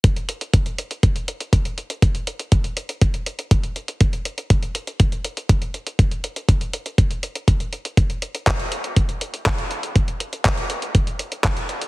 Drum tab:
HH |xxxxxxxxxxxxxxxx|xxxxxxxxxxxxxxxx|xxxxxxxxxxxxxxxx|xxxxxxxxxxxxxxxx|
CP |----------------|----------------|----------------|----------------|
BD |o---o---o---o---|o---o---o---o---|o---o---o---o---|o---o---o---o---|

HH |xxxxxxxxxxxxxxxx|xxxxxxxxxxxxxxxx|
CP |----x-------x---|----x-------x---|
BD |o---o---o---o---|o---o---o---o---|